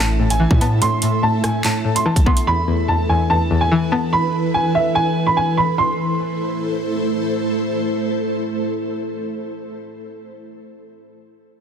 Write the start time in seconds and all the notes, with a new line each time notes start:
Already playing: A1 A3 E4 A4 E5
0.00 A2 A5
0.20 A2
0.30 G#5, closed hi-hat
0.40 E3
0.51 A2, kick
0.61 B3 A5, closed hi-hat
0.82 A2 C6, closed hi-hat
1.02 A2, closed hi-hat
1.23 A2 A5
1.43 A2 G#5, cross-stick, closed hi-hat
1.64 A2 A5, clap, closed hi-hat
1.85 A2
1.96 C6, closed hi-hat
2.06 E3 A5
2.16 kick, closed hi-hat
2.26 B3 C6, kick
2.37 closed hi-hat
2.47 E2 E3 E4 B4 B5
2.68 E2
2.88 E2 A5
3.09 E2 G#5
3.30 E2 A5
3.51 E2
3.61 G#5
3.72 E3
3.92 B3 A5
4.13 B5
4.54 G#5
4.75 E5
4.95 G#5
5.26 B5
5.37 G#5
5.57 B5
5.78 A3 E4 A4 C5 C6